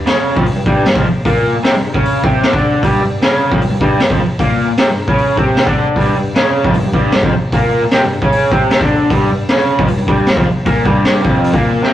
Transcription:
0.06 C#3 C#4, snare, open hi-hat
0.36 F2 F3, kick
0.46 G2, open hi-hat
0.57 G2
0.66 G2 G3, kick
0.86 G2, snare, open hi-hat
0.96 F2 F3, kick
1.06 muted overdriven electric guitar stroke
1.25 A#2 A#3, kick, open hi-hat
1.55 muted overdriven electric guitar stroke
1.64 C3 C4, snare, open hi-hat
1.76 G2
1.94 C#3 C#4, kick
2.05 open hi-hat
2.24 C3 C4, kick
2.43 snare, open hi-hat
2.53 D3 D4, kick
2.83 G2 G3, kick, open hi-hat
3.03 G2
3.22 C#3 C#4, snare, open hi-hat
3.51 F2 F3, kick
3.61 G2, open hi-hat
3.71 G2
3.81 G2 G3, kick
4.00 G2, snare, open hi-hat
4.10 F2 F3, kick
4.20 muted overdriven electric guitar stroke
4.39 A#2 A#3, kick, open hi-hat
4.69 muted overdriven electric guitar stroke
4.78 C3 C4, snare, open hi-hat
4.89 G2
5.08 C#3 C#4, kick
5.18 open hi-hat
5.37 C3 C4, kick
5.57 snare, open hi-hat
5.67 D3 D4, kick
5.96 G2 G3, kick, open hi-hat
6.17 G2
6.35 C#3 C#4, snare, open hi-hat
6.65 F2 F3, kick
6.74 G2, open hi-hat
6.85 G2
6.94 G2 G3, kick
7.12 G2, snare, open hi-hat
7.23 F2 F3, kick
7.35 muted overdriven electric guitar stroke
7.53 A#2 A#3, kick, open hi-hat
7.83 muted overdriven electric guitar stroke
7.91 C3 C4, snare, open hi-hat
8.04 G2
8.22 C#3 C#4, kick
8.32 open hi-hat
8.52 C3 C4, kick
8.71 snare, open hi-hat
8.81 D3 D4, kick
9.10 G2 G3, kick, open hi-hat
9.30 G2
9.49 C#3 C#4, snare, open hi-hat
9.78 F2 F3, kick
9.88 G2, open hi-hat
9.98 G2
10.07 G2 G3, kick
10.27 G2, snare, open hi-hat
10.36 F2 F3, kick
10.46 muted overdriven electric guitar stroke
10.66 A#2 A#3, kick, open hi-hat
10.85 G2 G3, kick
11.05 snare, open hi-hat
11.23 F2 F3, kick
11.44 open hi-hat
11.54 A#2 A#3, kick
11.82 C3 C4, snare

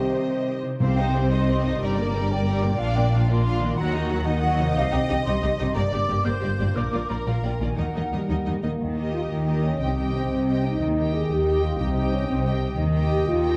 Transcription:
Already playing: C3 D#3 G3 D#4 G4 C5 D#5 G5
0.12 C5
0.29 D#5
0.46 G4
0.62 C3 D#4
0.67 D#4
0.71 G4
0.75 C5 F5
0.80 C2 C3 C4 G4 C5
0.97 D#4 C5 D#5 G5
1.15 C4 G4 C5
1.30 D#4 C5 D#5 C6
1.46 C4 G4 C5
1.62 G2 D#4 C5 D#5
1.67 D4
1.71 G4
1.76 A#4 D5
1.80 G1 G2 G3 G4 D5 A#5
1.94 D5
1.98 A#3 A#4
2.12 G3 A#4
2.16 G4
2.30 A#3 A#4 D5 G5
2.45 G3 G4 A#4
2.61 A#2 A#3 A#4 D5
2.65 D4
2.70 F4
2.74 A#4 F5
2.79 A#1 A#2 D4 F4 D5 F5
2.95 A#3 D4 D5 G5
3.12 D4 F4 F5
3.28 A#3 D4 F4 D5 C6
3.46 D4 F4 F5
3.60 D#3 A#3 D4 D5
3.64 D#4
3.69 F#4
3.73 A#4
3.77 D#2 D#3 F#3 F#4 F#5 A#5
3.94 A#3 D#4 D#5
4.09 F#3 F#4 F#5
4.25 A#3 D#4 D#5 F#5
4.41 F#3 F#4 F#5
4.58 C3 A#3 D#4 D#5
4.63 D#4
4.67 G4
4.72 D#5 F5
4.76 C2 C3 D#4 G4
4.92 C2 C3 D#4 G4 D#5 G5
5.09 C2 C3 D#4 G4 D#5
5.25 C2 C3 D#4 G4 D#5 C6
5.41 C2 C3 D#4 G4 D#5
5.57 C2 G2 C3 D#4 G4 D#5
5.61 D4
5.66 G4
5.70 A#4 D5
5.75 G1 G2 A#3 G4 D5 A#5
5.91 G1 G2 A#3 G4 D5 D6
6.08 G1 G2 A#3 G4 D5
6.24 G1 G2 A#3 G4 C5 D5 G6
6.40 G1 G2 A#3 G4 D5
6.57 G1 G2 A#2 A#3 G4 D5
6.62 D4
6.67 F4
6.71 A#3 A#4
6.75 A#1 A#2 F4 A#4 D5 D6
6.92 A#1 A#2 A#3 F4 D5
7.09 A#1 A#2 A#3 F4 D5 A#5
7.26 A#1 A#2 A#3 F4 D5 F5
7.42 A#1 A#2 A#3 F4 D5 G5
7.59 A#1 A#2 D#3 A#3 F4 D5 G#5
7.64 D#4
7.69 F#4
7.73 D#3 A#3 D#4 A#4
7.78 D#2 D#5 F#5
7.94 D#2 D#3 A#3 D#4 D#5
8.12 D#2 D#3 G3 A#3 D#4 D#5
8.29 D#2 D#3 A#3 D#4 D#5
8.46 D#2 D#3 A#3 D#4 D#5
8.62 D#2 D#3 A#3 D#4 D#5
8.80 D#2 D#3 D#5 G5
8.96 D#4 G4 A#4 D#5
9.13 F4 G4
9.30 D#2 D#3 D#4 D#5
9.45 G4 A#4 D#5 G5
9.63 C#4 D#5
9.79 C2 C3 C4 D#5 G5
9.83 G4
9.97 D#4 G4 D#5 G5
10.14 C4 G4
10.30 C2 C3 D#5
10.47 G4 D#5 G5
10.63 D#4 D#5
10.79 D#2 D#3 D#5 G5
10.96 D#4 G4 D#5 G5
11.13 G4 G#4
11.29 D#2 D#3 G4 D#5
11.46 G4 D#5 G5
11.62 F4 D#5
11.77 C2 C3 D#4 G4 D#5 G5
11.95 D#4 G4 D#5 G5
12.11 C#4 G4
12.27 C2 C3 C4 D#5
12.44 G4 D#5 G5
12.60 D#5
12.77 D#2 D#3 D#5 G5
12.93 D#4 G4 D#5 G5
13.10 G4
13.26 D#2 D#3 F4 D#5
13.42 G4 D#5 G5

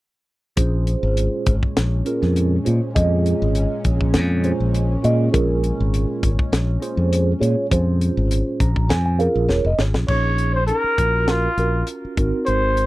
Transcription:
0.57 A#1 A#2 G#3 C#4 F4 G#4 C5, kick, closed hi-hat
0.87 closed hi-hat
1.03 G#1
1.17 closed hi-hat
1.46 G#1, kick, closed hi-hat
1.63 kick
1.77 A#1, snare, closed hi-hat
2.05 C#4 F4 G#4 A#4, closed hi-hat
2.22 F2, snare
2.36 closed hi-hat
2.64 A#2 C#4 F4 G#4 C5, closed hi-hat
2.94 F2 C#4 F4 G#4 D#5, kick, closed hi-hat
3.26 closed hi-hat
3.42 G#1
3.55 closed hi-hat
3.84 A#1, kick, closed hi-hat
4.01 kick
4.14 F2, snare, closed hi-hat
4.43 C#4 F4 G#4 C5, closed hi-hat
4.60 A#1
4.74 closed hi-hat
5.03 A#2 C#4 F4 G#4 D#5, closed hi-hat
5.31 A#1 C#4 F4 G#4 A#4, kick, closed hi-hat
5.64 closed hi-hat
5.80 G#1
5.94 closed hi-hat
6.23 G#1, kick, closed hi-hat
6.39 kick
6.52 A#1, snare, closed hi-hat
6.80 C#4 F4 G#4 C5, closed hi-hat
6.97 F2
7.13 closed hi-hat
7.40 A#2 C#4 F4 G#4 C#5, closed hi-hat
7.70 F2 C#4 F4 G#4 C5, kick, closed hi-hat
8.01 closed hi-hat
8.17 G#1
8.31 closed hi-hat
8.60 A#1 A#5, kick, closed hi-hat
8.76 kick
8.89 F2 G#5, snare, closed hi-hat
9.06 G#5
9.19 C#4 F4 G#4 A#4 F5, closed hi-hat
9.35 A#1
9.48 D#1 C#5, snare
9.65 F1 D#5
9.79 G#1 C#4 F4 G#4 C#5, snare
9.94 A#1, snare
10.08 A#1 C#4 D#4 G#4 C#5, kick, crash
10.38 closed hi-hat
10.54 C5
10.67 C#4 D#4 G#4 A#4, closed hi-hat
10.84 muted fingered electric bass stroke
10.98 A#1 C#4 F4 F#4 A#4, kick, closed hi-hat
11.28 F4, snare, closed hi-hat
11.57 A#1 C#4 F4 F#4 A#4, closed hi-hat
11.87 closed hi-hat
12.05 muted fingered electric bass stroke
12.17 G#1 C4 D#4 F#4 A#4, kick, closed hi-hat
12.46 G#1 C5, closed hi-hat
12.77 closed hi-hat

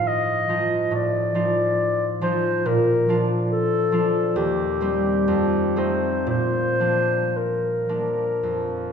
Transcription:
Already playing: A2 F3 D#4 F4
0.07 D#5
0.49 F3 D#4 F4
0.91 A2
0.95 D5
1.34 F3 D#4 F4
2.21 F3 D#4 F4 C5
2.66 A#2 A#4
3.09 F3 D4 F4
3.51 A4
3.92 F3 D4 F4
4.36 D#2 G4
4.81 G3 C4 D#4
5.28 F2
5.76 A3 C4 D#4 C5
6.27 A#2 C5
6.80 F3 A#3 D4
7.37 A#4
7.89 F3 A#3 D4
8.43 F2

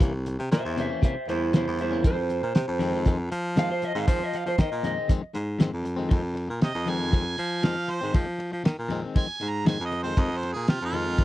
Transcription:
0.00 C2 C3 E3 A#3 C#4, kick, closed hi-hat
0.13 muted clean electric guitar stroke
0.26 muted clean electric guitar stroke, closed hi-hat
0.39 C3, muted clean electric guitar stroke
0.51 A#2 C5 E5, muted clean electric guitar stroke, snare, closed hi-hat
0.65 E2
0.77 C3 E3 A#3 C#4 C5 E5, closed hi-hat
0.89 E3 A#3 C#4
1.02 C3 E3 A#3 C#4 C5 E5, kick, closed hi-hat
1.16 muted clean electric guitar stroke
1.28 E2 E4 C5, muted clean electric guitar stroke, closed hi-hat
1.53 C3 E3 A#3 C#4 E4 C5, snare, closed hi-hat
1.67 E2, muted clean electric guitar stroke
1.79 E4 C5, muted clean electric guitar stroke, closed hi-hat
1.91 E3 A#3 C#4
2.03 F2 D#3 G#3 C4 C5, kick, closed hi-hat
2.17 muted clean electric guitar stroke
2.30 muted clean electric guitar stroke, closed hi-hat
2.42 A#2, muted clean electric guitar stroke
2.55 C3, muted clean electric guitar stroke, snare, closed hi-hat
2.68 F2
2.79 F2 D#3 G#3 C4, closed hi-hat
2.92 D#3 G#3 C4
3.05 F2 D#3 G#3 C4, kick, closed hi-hat
3.18 muted clean electric guitar stroke
3.31 F3, muted clean electric guitar stroke, closed hi-hat
3.56 F2 D#3 G#3 C4 F5, snare, closed hi-hat
3.70 C5, muted clean electric guitar stroke
3.82 D#5, muted clean electric guitar stroke, closed hi-hat
3.95 G#2 D#3 G#3 C4 F5
4.08 F2 D#3 F3 G#3 C4 C5, kick, closed hi-hat
4.21 D#5, muted clean electric guitar stroke
4.33 F5, muted clean electric guitar stroke, closed hi-hat
4.46 F3 C5, muted clean electric guitar stroke
4.58 D#3 D#5, muted clean electric guitar stroke, kick, snare, closed hi-hat
4.72 A#2
4.83 F2 D#3 G#3 C4 D#5, closed hi-hat
4.96 D#3 G#3 C4
5.08 F2 D#3 G#3 C4, kick, closed hi-hat
5.23 muted clean electric guitar stroke
5.34 G#2, muted clean electric guitar stroke, closed hi-hat
5.59 F2 D#3 G#3 C4, snare, closed hi-hat
5.72 F2, muted clean electric guitar stroke
5.84 muted clean electric guitar stroke, closed hi-hat
5.96 D#3 G#3 C4
6.09 F2 D#3 G#3 C4, kick, ride
6.23 muted clean electric guitar stroke
6.34 muted clean electric guitar stroke, ride
6.48 A#2, muted clean electric guitar stroke
6.61 C3 D#5, muted clean electric guitar stroke, snare, ride
6.75 F2
6.86 F2 D#3 G#3 C4 G#5, ride
6.98 D#3 G#3 C4
7.11 F2 D#3 G#3 C4, kick, ride
7.25 muted clean electric guitar stroke
7.37 F3, muted clean electric guitar stroke, ride
7.63 F2 D#3 G#3 C4 F5, snare, ride
7.76 muted clean electric guitar stroke
7.88 C5, muted clean electric guitar stroke, ride
8.01 G#2 D#3 G#3 C4
8.13 F2 D#3 F3 G#3 C4, kick, ride
8.27 muted clean electric guitar stroke
8.38 muted clean electric guitar stroke, ride
8.52 F3, muted clean electric guitar stroke
8.64 D#3, muted clean electric guitar stroke, snare, ride
8.79 A#2
8.89 F2 D#3 G#3 C4, ride
9.02 D#3 G#3 C4
9.15 F2 D#3 G#3 C4 G#5, kick, ride
9.28 muted clean electric guitar stroke
9.40 G#2, muted clean electric guitar stroke, ride
9.50 A#5
9.65 F2 D#3 G#3 C4 G#5, snare, ride
9.79 F2, muted clean electric guitar stroke
9.86 D#5
9.92 muted clean electric guitar stroke, ride
10.03 G#3 C4 C5
10.07 D#3
10.17 F2 D#3 G#3 C4, kick, ride
10.21 D#5
10.30 muted clean electric guitar stroke
10.37 C5
10.43 muted clean electric guitar stroke, ride
10.53 A#2 G#4, muted clean electric guitar stroke
10.68 C3 F4, muted clean electric guitar stroke, snare, ride
10.82 F2 F4
10.93 F2 D#3 G#3 C4, ride
11.07 D#3 G#3 C4
11.18 F2 D#3 G#3 C4, kick, ride

